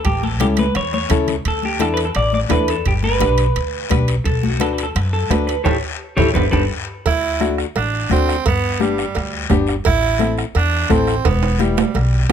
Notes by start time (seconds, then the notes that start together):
0.05 A1 G4, bombo low, high conga, high timbale, long guiro
0.23 A4, high conga
0.40 C#2 C#4 E4 G4 A4, bombo rim, high conga, high timbale, short guiro
0.57 B4, high conga, high timbale, short guiro
0.75 E2 C#5, bombo rim, low conga, high timbale, long guiro
0.94 C#5, high conga
1.09 C#2 C#4 E4 A4, bombo low, bombo rim, low conga, high timbale, short guiro
1.28 low conga, high timbale, short guiro
1.45 D2 A4, bombo low, high conga, high timbale, long guiro
1.63 G4, high conga
1.79 E2 D4 E4 A4, bombo rim, high conga, high timbale, short guiro
1.94 B4, high timbale
1.99 short guiro
2.05 A4
2.15 A1 D5, bombo rim, high conga, high timbale, long guiro
2.33 D5, high conga
2.49 E2 D4 E4 A4 B4, bombo low, bombo rim, high conga, high timbale, low timbale, short guiro
2.68 A4, high timbale, short guiro
2.85 G1 G4, bombo low, high conga, high timbale, long guiro
3.03 B4, high conga
3.20 B1 D4 G4 B4, bombo rim, high conga, high timbale, short guiro
3.38 high timbale, short guiro
3.55 D2, high conga, high timbale, long guiro
3.90 B1 D4 G4 B4, bombo low, bombo rim, high conga, high timbale, short guiro
4.08 high timbale, short guiro
4.25 B1 A4, bombo low, high conga, high timbale, long guiro
4.43 F#4, high conga
4.60 D2 D4 F#4 A4 B4, bombo rim, high conga, high timbale, short guiro
4.73 B4
4.78 high timbale, short guiro
4.83 A4
4.95 F#2 B4, bombo rim, high conga, high timbale, long guiro
5.13 A4
5.30 D2 D4 F#4 B4, bombo low, bombo rim, high conga, high timbale, low timbale, short guiro
5.47 B4, high timbale, short guiro
5.64 A1 E4 G4 A4 C#5, bombo low, low conga, high timbale, long guiro
6.17 A1 E4 G4 A4 C#5, bombo low, low conga, high timbale, long guiro
6.34 G1 B3 D4 G4 A4 B4, bombo low, low conga, high timbale, long guiro
6.51 G1 B3 D4 G4 A4 B4, bombo low, low conga, high timbale, long guiro
7.06 D2 E4, bombo low, bombo rim, cowbell, high conga, long guiro
7.40 A3 D4 F#4, bombo rim, high conga, short guiro
7.58 bombo rim, short guiro
7.75 A1 D4, bombo rim, cowbell, high conga, long guiro
8.10 D2 A3 C4 D4 F#4, bombo low, bombo rim, high conga, short guiro
8.29 bombo rim, short guiro
8.45 G1 B3, bombo low, bombo rim, cowbell, high conga, long guiro
8.80 G3 B3 D4 G4, bombo rim, high conga, short guiro
8.98 bombo rim, short guiro
9.15 D2, bombo rim, cowbell, high conga, long guiro
9.49 G1 B3 D4 G4, bombo low, bombo rim, high conga, low conga, low timbale, short guiro
9.67 bombo rim, short guiro
9.84 A1 E4, bombo low, bombo rim, cowbell, high conga, long guiro
10.19 C4 E4 A4, bombo rim, high conga, short guiro
10.38 bombo rim, short guiro
10.55 E2 D4, bombo rim, cowbell, high conga, long guiro
10.90 A1 C4 E4 A4, bombo low, bombo rim, high conga, low timbale, short guiro
11.07 bombo rim, short guiro
11.25 E1 B3, bombo low, bombo rim, cowbell, high conga, high timbale, long guiro
11.43 high timbale
11.59 G3 B3 E4 G4, bombo rim, high conga, short guiro
11.77 bombo rim, low timbale, short guiro
11.94 B1, bombo rim, cowbell, high conga, low conga, long guiro